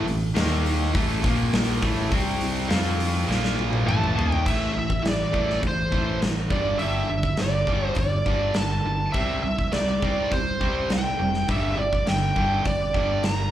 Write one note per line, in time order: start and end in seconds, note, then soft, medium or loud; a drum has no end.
0.06 0.33 A1 medium
0.06 0.30 A2 medium
0.06 0.30 E3 medium
0.06 open hi-hat medium
0.34 0.90 D#2 medium
0.34 0.92 D#3 loud
0.34 0.93 A#3 loud
0.34 0.93 D#4 loud
0.34 snare loud
0.34 open hi-hat medium
0.66 open hi-hat medium
0.93 1.22 A1 loud
0.93 1.22 A2 medium
0.93 1.22 E3 loud
0.93 1.22 A3 medium
0.93 kick loud
0.93 open hi-hat medium
1.23 1.78 A#1 loud
1.23 1.81 A#2 medium
1.23 1.81 F3 medium
1.23 1.82 A#3 medium
1.23 kick loud
1.23 open hi-hat medium
1.53 snare loud
1.53 open hi-hat medium
1.81 2.09 A1 medium
1.81 2.10 A2 medium
1.81 2.10 E3 medium
1.81 2.10 A3 medium
1.81 kick loud
1.81 open hi-hat medium
2.12 2.66 C2 loud
2.12 2.68 C3 medium
2.12 2.69 G3 loud
2.12 2.68 C4 medium
2.12 kick loud
2.12 open hi-hat medium
2.41 open hi-hat medium
2.68 3.24 F2 medium
2.68 3.26 F3 loud
2.68 3.27 C4 loud
2.68 3.27 F4 loud
2.68 snare loud
2.68 open hi-hat medium
3.00 open hi-hat medium
3.27 3.82 A#1 loud
3.27 3.85 A#2 medium
3.27 3.85 F3 medium
3.27 3.85 A#3 loud
3.31 snare medium
3.44 snare medium
3.59 high tom medium
3.73 high tom medium
3.85 4.13 A1 medium
3.85 4.14 A2 medium
3.85 4.15 E3 loud
3.85 4.15 A3 loud
3.85 4.34 A5 loud
3.85 mid tom medium
4.04 mid tom medium
4.15 4.43 D#2 medium
4.15 4.44 D#3 medium
4.15 4.44 A#3 medium
4.15 4.44 D#4 medium
4.15 floor tom loud
4.32 4.47 G5 loud
4.32 floor tom medium
4.45 4.69 A1 medium
4.45 4.73 A2 medium
4.45 4.73 E3 medium
4.45 4.73 A3 medium
4.45 4.76 E5 medium
4.45 kick loud
4.45 crash medium
4.74 4.97 A1 medium
4.74 5.00 A2 medium
4.74 5.01 E3 medium
4.79 5.06 E5 medium
4.90 kick medium
5.03 5.26 A1 medium
5.03 5.30 A2 medium
5.03 5.30 E3 medium
5.03 snare loud
5.03 open hi-hat soft
5.08 5.60 D5 medium
5.32 5.56 A1 medium
5.32 5.59 A2 medium
5.32 5.60 E3 medium
5.32 5.61 A3 medium
5.32 kick medium
5.50 snare soft
5.60 5.85 A1 medium
5.60 5.87 A2 medium
5.60 5.88 E3 medium
5.60 kick loud
5.60 open hi-hat soft
5.67 6.19 C5 medium
5.91 6.15 A1 medium
5.91 6.19 A2 medium
5.91 6.19 E3 medium
5.91 6.20 A3 medium
5.91 kick medium
6.22 6.44 A1 medium
6.22 6.48 A2 medium
6.22 6.48 E3 medium
6.22 snare loud
6.22 open hi-hat soft
6.50 6.73 G1 medium
6.50 6.78 G2 medium
6.50 6.78 D3 medium
6.50 6.79 G3 medium
6.50 6.79 D5 medium
6.50 kick medium
6.79 7.02 G1 medium
6.79 7.07 G2 medium
6.79 7.08 D3 medium
6.79 7.08 G3 medium
6.79 7.39 E5 medium
6.79 open hi-hat soft
7.09 7.32 G1 medium
7.09 7.35 G2 medium
7.09 7.35 D3 medium
7.23 kick medium
7.37 7.62 G1 medium
7.37 7.65 G2 medium
7.37 7.65 D3 medium
7.37 snare loud
7.37 open hi-hat soft
7.41 7.86 D5 medium
7.67 7.90 G1 medium
7.67 7.95 G2 medium
7.67 7.95 D3 medium
7.67 7.96 G3 medium
7.67 kick medium
7.86 7.97 C5 medium
7.95 8.20 G1 medium
7.95 8.24 G2 medium
7.95 8.58 D5 medium
7.95 kick loud
7.95 open hi-hat soft
7.99 8.24 D3 medium
8.26 8.49 G1 medium
8.26 8.54 G2 medium
8.26 8.54 D3 medium
8.26 8.55 G3 medium
8.26 kick medium
8.54 8.79 G1 medium
8.54 8.82 G2 medium
8.54 8.82 D3 medium
8.54 9.11 A5 medium
8.54 snare loud
8.54 open hi-hat soft
8.85 9.07 G1 medium
8.85 9.12 G2 medium
8.85 9.12 D3 medium
9.12 9.37 C2 medium
9.12 9.42 C3 medium
9.12 9.42 G3 medium
9.12 9.42 C4 medium
9.12 9.42 E5 medium
9.12 kick loud
9.12 open hi-hat soft
9.43 9.66 C2 medium
9.43 9.70 C3 medium
9.43 9.70 G3 medium
9.43 9.73 E5 medium
9.59 kick medium
9.72 9.96 C2 medium
9.72 9.99 C3 medium
9.72 10.00 G3 medium
9.72 10.33 D5 medium
9.72 snare loud
9.72 open hi-hat soft
10.02 10.25 C2 medium
10.02 10.30 C3 medium
10.02 10.30 G3 medium
10.02 10.30 C4 medium
10.02 kick medium
10.31 10.54 C2 medium
10.31 10.58 C3 medium
10.31 10.58 G3 medium
10.31 10.92 C5 medium
10.31 kick loud
10.31 open hi-hat soft
10.60 10.84 C2 medium
10.60 10.88 C3 medium
10.60 10.88 G3 medium
10.60 10.89 C4 medium
10.60 kick medium
10.90 11.13 C2 medium
10.90 11.16 C3 medium
10.90 11.16 G3 medium
10.90 11.46 G5 medium
10.90 snare loud
10.90 open hi-hat soft
11.19 11.42 F1 medium
11.19 11.45 C3 medium
11.19 11.45 G3 medium
11.34 snare soft
11.48 11.72 G1 medium
11.48 11.76 G2 medium
11.48 11.76 D3 medium
11.48 11.77 G3 medium
11.48 11.78 E5 medium
11.48 kick loud
11.48 open hi-hat soft
11.77 12.01 G1 medium
11.77 12.04 G2 medium
11.77 12.04 D3 medium
11.77 12.08 D5 medium
11.93 kick medium
12.06 12.31 G1 medium
12.06 12.33 G2 medium
12.06 12.33 D3 medium
12.06 12.68 G5 medium
12.06 snare medium
12.06 open hi-hat soft
12.36 12.59 G1 medium
12.36 12.64 G2 medium
12.36 12.64 D3 medium
12.36 12.64 G3 loud
12.36 kick medium
12.65 12.89 G1 medium
12.65 12.92 G2 medium
12.65 12.92 D3 medium
12.65 13.26 D5 medium
12.65 kick loud
12.65 open hi-hat soft
12.93 13.18 G1 medium
12.93 13.22 G2 medium
12.93 13.22 D3 medium
12.93 13.23 G3 medium
12.93 kick medium
13.22 13.46 G1 medium
13.22 13.51 G2 medium
13.22 13.51 D3 medium
13.22 13.51 A#5 medium
13.22 snare loud
13.22 open hi-hat soft